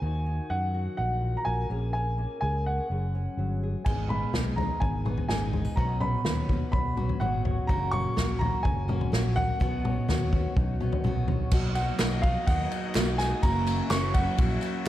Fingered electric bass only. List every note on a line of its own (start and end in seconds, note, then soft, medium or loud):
0.02 0.39 D#2 medium
0.50 0.87 F#2 medium
0.99 1.35 A#1 medium
1.46 1.65 A#1 medium
1.70 2.25 A#1 medium
2.42 2.79 C#2 medium
2.90 3.27 F#1 medium
3.37 3.74 G1 medium
3.86 4.23 G#1 medium
4.33 4.70 B1 medium
4.82 5.18 G#1 medium
5.29 5.66 G#1 medium
5.77 6.14 B1 medium
6.24 6.61 D#2 medium
6.73 7.10 B1 medium
7.21 7.57 G#1 medium
7.69 8.06 F#1 loud
8.17 8.54 A#1 medium
8.65 9.02 F#1 medium
9.13 9.50 A#1 medium
9.61 9.97 B1 medium
10.09 10.45 D#2 medium
10.57 10.93 B1 medium
11.04 11.41 B1 loud
11.52 11.89 B1 medium
12.00 12.36 B1 medium
12.47 12.66 D#2 loud
12.96 13.32 B1 loud
13.43 13.80 F#1 loud
13.90 14.27 F#1 medium
14.39 14.57 A#1 loud